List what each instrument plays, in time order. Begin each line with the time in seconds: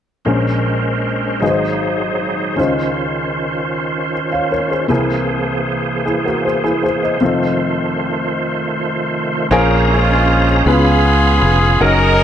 0.25 grand piano A#1 A#2 C#4 G#4 A#4 C5, tonewheel organ G#3 C#4 A#4 C5
1.40 grand piano G#1 G#2 D#4 F#4 G#4 B4, tonewheel organ F#3 D#4 G#4
1.50 grand piano C5
2.56 grand piano C#2 C#3 C#4 D#4 F4 C5, tonewheel organ D#3 C#4 F4
4.32 grand piano C#5 F5
4.51 grand piano A#4 C#5
4.70 grand piano G#4 C5
4.88 grand piano C2 C3 C4 E4 G#4 A#4, tonewheel organ E3 A#3 G#4 C5
6.06 grand piano E4 G#4
6.25 grand piano F#4 A#4
6.45 grand piano G#4 C5
6.64 grand piano E4 G#4
6.83 grand piano G#4 C5
7.03 grand piano C5 D#5
7.21 grand piano F1 F2 C4 D#4 F4 A4, tonewheel organ D#3 A3 F4
9.51 fingered electric bass A#1, grand piano A#2 C#4 F4 G#4 A#4 C5, tonewheel organ C#4 G#4 C5 A#5
9.91 horn section G#3 C#4 F4
10.66 fingered electric bass C#2, grand piano C#3 B3 C#4 E4 G#4 B4, horn section B3 F4 G#4, tonewheel organ F5 B5
10.73 grand piano F4
11.42 fingered electric bass F1
11.80 fingered electric bass F#1, grand piano C#4 D#4 F#4 G#4 A#4, horn section C#4 D#4 A#4, tonewheel organ D#5 F#5 A#5